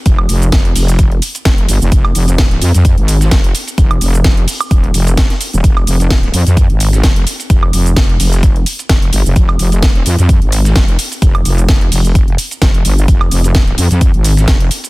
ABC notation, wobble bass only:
X:1
M:4/4
L:1/16
Q:"Swing 16ths" 1/4=129
K:Fm
V:1 name="Wobble bass" clef=bass
F,,,2 F,,,2 F,,,2 F,,,4 z2 F,,,2 G,,, F,,, | F,,,2 F,,,4 F,, F,,2 A,,,3 F,,,2 z2 | F,,,2 F,,,2 F,,,2 z2 E,,,2 F,,,3 z2 E,,, | F,,,2 F,,,4 F,, F,,2 A,,,3 F,,,2 z2 |
F,,,2 F,,,2 F,,,2 F,,,4 z2 F,,,2 G,,, F,,, | F,,,2 F,,,4 F,, F,,2 A,,,3 F,,,2 z2 | F,,,2 F,,,2 F,,,2 F,,,4 z2 F,,,2 G,,,2 | F,,,2 F,,,4 F,, F,,2 A,,,3 F,,,2 z2 |]